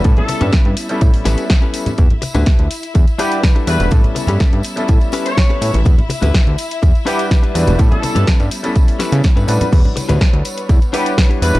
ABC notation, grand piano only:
X:1
M:4/4
L:1/16
Q:1/4=124
K:Edor
V:1 name="Grand piano"
[G,B,CEA]6- [G,B,CEA] [G,B,CEA]8- [G,B,CEA] | z8 z2 [G,DEBf]4 [G,DEFB]2 | [G,B,CEA]6- [G,B,CEA] [G,B,CEA]8- [G,B,CEA] | z8 z2 [G,DEBf]4 [G,DEFB]2 |
[G,B,CEA]6- [G,B,CEA] [G,B,CEA]6- [G,B,CEA] [G,DEBf]2- | [G,DEBf]8- [G,DEBf]2 [G,DEBf]4 [G,DEFB]2 |]